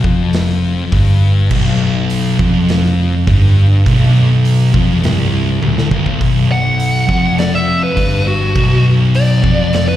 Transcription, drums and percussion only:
0.04 kick loud
0.33 snare loud
0.33 open hi-hat medium
0.49 snare soft
0.92 kick loud
0.92 open hi-hat medium
1.51 kick loud
1.51 crash loud
2.10 open hi-hat medium
2.39 kick loud
2.68 snare loud
2.68 open hi-hat medium
2.85 snare soft
3.27 kick loud
3.27 open hi-hat medium
3.86 kick loud
3.86 open hi-hat medium
4.45 open hi-hat medium
4.74 kick loud
5.04 snare loud
5.04 open hi-hat medium
5.63 high tom medium
5.78 snare medium
5.91 kick medium
6.06 kick medium
6.21 kick loud
6.21 open hi-hat medium
6.80 open hi-hat medium
7.09 kick loud
7.38 snare loud
7.38 open hi-hat medium
7.55 snare soft
7.97 kick loud
7.97 open hi-hat medium
8.56 kick loud
8.56 open hi-hat medium
9.15 open hi-hat medium
9.44 kick loud
9.73 snare loud
9.73 open hi-hat medium

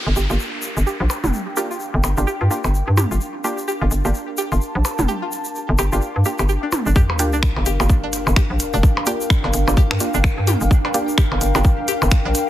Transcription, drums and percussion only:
0.16 shaker medium
0.30 shaker soft
0.40 shaker soft
0.62 shaker medium
0.77 shaker medium
0.87 shaker soft
1.10 percussion blips medium
1.10 shaker medium
1.24 mid tom medium
1.24 shaker soft
1.33 shaker soft
1.57 shaker medium
1.71 shaker soft
1.80 shaker soft
2.04 percussion blips soft
2.04 shaker medium
2.17 shaker medium
2.27 shaker soft
2.51 shaker medium
2.64 percussion blips soft
2.64 shaker soft
2.75 shaker soft
2.97 mid tom medium
2.97 percussion blips medium
2.97 shaker medium
3.11 shaker soft
3.21 shaker soft
3.44 shaker medium
3.58 shaker soft
3.68 shaker soft
3.91 shaker medium
4.05 shaker soft
4.14 shaker soft
4.38 shaker medium
4.52 shaker soft
4.61 shaker soft
4.85 percussion blips medium
4.85 shaker loud
4.99 mid tom medium
4.99 shaker medium
5.09 shaker soft
5.32 shaker medium
5.45 shaker medium
5.55 shaker soft
5.78 percussion blips medium
5.78 shaker medium
5.92 shaker medium
6.01 shaker soft
6.25 shaker medium
6.39 percussion blips soft
6.39 shaker medium
6.49 shaker soft
6.72 mid tom medium
6.72 percussion blips medium
6.72 shaker medium
6.86 shaker medium
6.95 kick loud
6.95 shaker soft
7.10 percussion blips medium
7.19 closed hi-hat medium
7.19 shaker medium
7.33 shaker soft
7.43 finger snap loud
7.43 kick loud
7.43 shaker soft
7.56 percussion blips medium
7.66 closed hi-hat medium
7.66 shaker medium
7.80 percussion blips medium
7.80 shaker medium
7.89 kick loud
7.89 shaker soft
8.13 closed hi-hat loud
8.13 shaker medium
8.27 percussion blips medium
8.27 shaker soft
8.36 finger snap loud
8.36 kick loud
8.36 shaker soft
8.60 closed hi-hat loud
8.60 shaker medium
8.73 shaker soft
8.83 kick loud
8.83 shaker soft
8.97 percussion blips medium
9.06 closed hi-hat loud
9.06 shaker medium
9.21 shaker medium
9.30 finger snap loud
9.30 kick loud
9.30 shaker soft
9.44 percussion blips medium
9.54 closed hi-hat loud
9.54 shaker loud
9.68 percussion blips medium
9.68 shaker medium
9.77 kick loud
9.77 shaker soft
9.91 finger snap medium
10.00 closed hi-hat medium
10.00 shaker loud
10.14 shaker medium
10.24 finger snap medium
10.24 kick loud
10.24 shaker soft
10.47 closed hi-hat loud
10.47 mid tom medium
10.47 shaker loud
10.61 shaker medium
10.71 kick loud
10.71 shaker soft
10.85 percussion blips medium
10.94 closed hi-hat loud
10.94 shaker loud
11.08 shaker medium
11.18 finger snap loud
11.18 kick loud
11.18 shaker soft
11.32 percussion blips medium
11.41 closed hi-hat loud
11.41 shaker loud
11.55 percussion blips medium
11.55 shaker medium
11.64 kick loud
11.64 shaker soft
11.88 closed hi-hat loud
11.88 shaker loud
12.02 percussion blips medium
12.02 shaker medium
12.11 finger snap loud
12.11 kick loud
12.11 shaker soft
12.35 closed hi-hat loud
12.35 shaker loud

